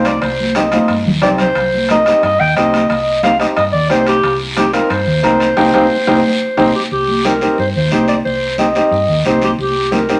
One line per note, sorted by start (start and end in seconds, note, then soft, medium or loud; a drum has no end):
0.00 0.16 C2 medium
0.00 0.12 C4 medium
0.00 0.12 D#4 medium
0.00 0.12 F4 medium
0.05 0.21 D5 medium
0.05 high conga medium
0.05 high timbale medium
0.05 short guiro medium
0.22 0.76 C2 medium
0.22 0.58 C5 medium
0.22 high conga soft
0.22 high timbale medium
0.22 long guiro medium
0.40 high conga medium
0.55 0.61 C4 medium
0.55 0.61 D#4 medium
0.55 0.61 G4 medium
0.55 0.96 D#5 medium
0.55 high conga loud
0.55 high timbale medium
0.55 short guiro medium
0.72 0.90 C4 medium
0.72 0.90 D#4 medium
0.72 0.90 F4 medium
0.72 high conga medium
0.72 high timbale medium
0.72 short guiro medium
0.88 1.02 G2 medium
0.88 high timbale medium
0.88 long guiro medium
1.05 1.19 D#2 medium
1.05 low conga medium
1.22 1.49 C2 medium
1.22 1.45 C4 medium
1.22 1.46 D#4 medium
1.22 1.46 G4 medium
1.22 1.30 D5 loud
1.22 low conga medium
1.22 high timbale medium
1.22 low timbale medium
1.22 short guiro medium
1.38 1.87 C5 medium
1.38 low conga medium
1.38 high timbale medium
1.38 short guiro medium
1.55 2.09 C2 medium
1.55 high conga soft
1.55 high timbale medium
1.55 long guiro medium
1.74 high conga medium
1.89 1.95 C4 medium
1.89 1.96 D#4 medium
1.89 1.96 A#4 medium
1.89 2.21 D#5 loud
1.89 high conga loud
1.89 high timbale medium
1.89 short guiro medium
2.06 2.24 C4 medium
2.06 2.24 D#4 medium
2.06 2.24 G4 medium
2.06 high timbale medium
2.06 short guiro medium
2.23 2.36 G2 medium
2.23 2.41 D#5 loud
2.23 high timbale medium
2.23 long guiro medium
2.40 2.53 D#2 medium
2.40 2.55 G5 medium
2.40 high conga soft
2.56 2.83 C2 loud
2.56 2.80 C4 medium
2.56 2.80 D#4 medium
2.56 2.80 G4 medium
2.56 2.87 D#5 medium
2.56 high conga medium
2.56 high timbale medium
2.56 short guiro medium
2.72 high conga medium
2.72 high timbale medium
2.72 short guiro medium
2.90 3.43 C2 medium
2.90 3.21 D#5 medium
2.90 high timbale medium
2.90 long guiro medium
3.23 3.29 C4 medium
3.23 3.29 D#4 medium
3.23 3.29 G4 medium
3.23 3.39 F5 medium
3.23 high conga loud
3.23 high timbale medium
3.23 short guiro medium
3.39 3.57 C4 medium
3.39 3.57 D#4 medium
3.39 3.57 G4 medium
3.39 3.48 D#5 medium
3.39 high timbale medium
3.39 short guiro medium
3.56 3.70 G2 medium
3.56 3.64 D#5 loud
3.56 high timbale medium
3.56 long guiro medium
3.72 3.87 D#2 medium
3.72 3.88 D5 medium
3.72 high conga soft
3.90 4.17 C2 medium
3.90 4.13 C4 medium
3.90 4.13 D#4 medium
3.90 4.14 G4 medium
3.90 4.06 C5 loud
3.90 high conga medium
3.90 high timbale medium
3.90 low timbale medium
3.90 short guiro medium
4.06 4.39 G4 medium
4.06 high timbale medium
4.06 short guiro medium
4.23 4.77 C2 medium
4.23 high conga soft
4.23 high timbale medium
4.23 long guiro medium
4.57 4.63 C4 medium
4.57 4.63 D#4 medium
4.57 4.72 G4 medium
4.57 4.63 G4 medium
4.57 high conga loud
4.57 high timbale medium
4.57 short guiro medium
4.73 4.91 C4 medium
4.73 4.91 D#4 soft
4.73 4.91 F4 medium
4.73 4.91 A#4 medium
4.73 high timbale medium
4.73 short guiro medium
4.90 5.04 G2 medium
4.90 6.57 C5 loud
4.90 high timbale medium
4.90 long guiro medium
5.07 5.20 D#2 medium
5.07 high conga soft
5.23 5.50 C2 medium
5.23 5.47 C4 medium
5.23 5.47 D#4 medium
5.23 5.47 A#4 medium
5.23 high conga medium
5.23 high timbale medium
5.23 low timbale medium
5.23 short guiro medium
5.40 high timbale medium
5.40 short guiro medium
5.57 5.70 C2 medium
5.57 5.68 C4 medium
5.57 5.68 D#4 medium
5.57 5.68 G4 medium
5.57 high conga loud
5.57 high timbale medium
5.57 long guiro loud
5.74 5.87 C2 medium
5.74 5.85 C4 medium
5.74 5.85 D#4 medium
5.74 5.85 G4 medium
5.74 high conga medium
5.74 high timbale loud
5.74 long guiro medium
6.07 6.20 C2 medium
6.07 6.18 C4 medium
6.07 6.18 D#4 medium
6.07 6.18 G4 medium
6.07 high conga medium
6.07 high timbale loud
6.07 long guiro medium
6.57 6.70 C2 medium
6.57 6.68 C4 medium
6.57 6.68 D#4 medium
6.57 6.68 G4 medium
6.57 6.74 C5 medium
6.57 high conga medium
6.57 high timbale medium
6.57 long guiro medium
6.75 6.83 G4 medium
6.91 7.45 C2 medium
6.91 7.27 G4 medium
6.91 high conga soft
6.91 long guiro medium
7.08 high conga medium
7.25 7.30 C4 medium
7.25 7.31 D#4 medium
7.25 7.31 G4 medium
7.25 7.59 A#4 medium
7.25 high conga loud
7.25 short guiro medium
7.41 7.59 C4 medium
7.41 7.59 D#4 medium
7.41 7.59 G4 medium
7.41 short guiro medium
7.58 7.72 G2 medium
7.58 7.67 C5 medium
7.58 long guiro medium
7.76 7.89 D#2 medium
7.76 8.07 C5 medium
7.76 high conga soft
7.91 8.19 C2 medium
7.91 8.15 C4 medium
7.91 8.15 D#4 medium
7.91 8.15 G4 medium
7.91 high conga medium
7.91 short guiro medium
8.08 8.16 D5 medium
8.08 short guiro medium
8.25 8.79 C2 medium
8.25 8.56 C5 medium
8.25 high conga soft
8.25 long guiro medium
8.58 8.64 C4 medium
8.58 8.65 D#4 medium
8.58 8.65 G4 medium
8.58 9.22 D#5 medium
8.58 high conga medium
8.58 short guiro medium
8.75 8.93 C4 medium
8.75 8.93 D#4 medium
8.75 8.93 G4 medium
8.75 short guiro medium
8.91 9.05 G2 medium
8.91 long guiro medium
9.08 9.22 D#2 medium
9.08 high conga soft
9.24 9.52 C2 medium
9.24 9.49 C4 medium
9.24 9.49 D#4 medium
9.24 9.49 G4 medium
9.24 9.42 C5 medium
9.24 high conga medium
9.24 short guiro medium
9.42 9.51 G4 medium
9.42 high conga medium
9.42 short guiro medium
9.58 10.12 C2 medium
9.58 9.94 G4 medium
9.58 high conga soft
9.58 long guiro medium
9.91 9.98 C4 medium
9.91 9.98 D#4 soft
9.91 9.98 G4 medium
9.91 10.20 A#4 medium
9.91 high conga loud
9.91 short guiro medium
10.09 10.20 C4 medium
10.09 10.20 D#4 medium
10.09 10.20 G4 medium
10.09 short guiro medium